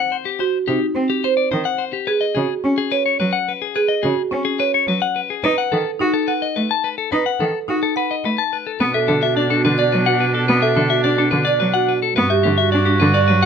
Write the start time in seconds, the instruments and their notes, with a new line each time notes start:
0.00 clean electric guitar F#5
0.12 clean electric guitar C5
0.25 clean electric guitar G4
0.39 marimba F#4, clean electric guitar C5
0.68 cello C3, marimba D#4, clean electric guitar G4
0.95 cello C4, marimba C4
1.10 clean electric guitar G4
1.24 marimba C5, clean electric guitar C5
1.37 clean electric guitar D5
1.51 cello D#3, clean electric guitar C5
1.65 clean electric guitar F#5
1.78 clean electric guitar C5
1.93 clean electric guitar G4
2.07 marimba G#4, clean electric guitar B4
2.21 clean electric guitar D#5
2.35 cello C#3, marimba F#4, clean electric guitar G#4
2.64 marimba C#4, cello C#4
2.78 clean electric guitar G#4
2.92 clean electric guitar B4, marimba C#5
3.06 clean electric guitar C#5
3.20 cello F#3, clean electric guitar B4
3.33 clean electric guitar F#5
3.48 clean electric guitar B4
3.62 clean electric guitar G#4
3.76 marimba G#4, clean electric guitar B4
3.88 clean electric guitar D#5
4.03 cello C#3, marimba F#4, clean electric guitar G#4
4.31 marimba C#4, cello C#4
4.45 clean electric guitar G#4
4.59 clean electric guitar B4, marimba C#5
4.74 clean electric guitar C#5
4.87 cello F#3, clean electric guitar B4
5.02 clean electric guitar F#5
5.16 clean electric guitar B4
5.30 clean electric guitar G#4
5.44 cello D#4, marimba B4, clean electric guitar B4
5.58 clean electric guitar F#5
5.72 cello D#3, marimba A4, clean electric guitar A4
5.99 marimba D#4, cello F#4
6.14 clean electric guitar A4
6.28 clean electric guitar B4, marimba F#5
6.42 clean electric guitar D#5
6.56 cello A3, clean electric guitar B4
6.71 clean electric guitar A5
6.84 clean electric guitar B4
6.98 clean electric guitar A4
7.12 cello D#4, marimba B4, clean electric guitar B4
7.26 clean electric guitar F#5
7.40 cello D#3, marimba A4, clean electric guitar A4
7.68 marimba D#4, cello F#4
7.83 clean electric guitar A4
7.96 clean electric guitar B4, marimba F#5
8.11 clean electric guitar D#5
8.24 cello A3, clean electric guitar B4
8.38 clean electric guitar A5
8.53 clean electric guitar B4
8.67 clean electric guitar A4
8.80 cello B2 B3, oboe D4, clean electric guitar B4
8.94 marimba A4, clean electric guitar E5
9.08 cello D3, clean electric guitar A4
9.22 marimba F#4, clean electric guitar E5
9.36 cello D4, clean electric guitar D5
9.50 marimba D4, clean electric guitar A4
9.65 cello D3, clean electric guitar B4
9.78 marimba D5, clean electric guitar D5
9.92 cello F#3, clean electric guitar B4
10.06 marimba F#4, clean electric guitar F#5
10.20 clean electric guitar B4
10.34 clean electric guitar A4
10.48 cello B3, clean electric guitar B4
10.62 marimba A4, clean electric guitar E5
10.76 cello D3, clean electric guitar A4
10.90 marimba F#4, clean electric guitar E5
11.04 cello D4, clean electric guitar D5
11.18 marimba D4, clean electric guitar A4
11.31 cello D3, clean electric guitar B4
11.45 clean electric guitar D5, marimba D5
11.60 cello F#3, clean electric guitar B4
11.74 marimba F#4, clean electric guitar F#5
11.88 clean electric guitar B4
12.02 clean electric guitar A4
12.16 cello G2 B3, oboe F#4, clean electric guitar B4
12.30 marimba G4, clean electric guitar E5
12.43 cello D3, clean electric guitar G4
12.58 marimba F#4, clean electric guitar E5
12.72 cello D4, clean electric guitar D5
12.85 marimba D4, clean electric guitar G4
13.00 cello D3, clean electric guitar B4
13.14 clean electric guitar D5, marimba D5
13.28 cello F#3, clean electric guitar B4
13.42 clean electric guitar F#5